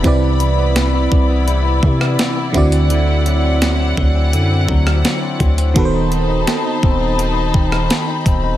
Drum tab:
HH |x-x-x---x---x-xx|x-x-x---x---x-xx|x-x-x---x---x-x-|
SD |----o------ro---|----o------ro---|----o------ro---|
BD |o-----o---o---o-|------o---o---o-|o-----o---o---o-|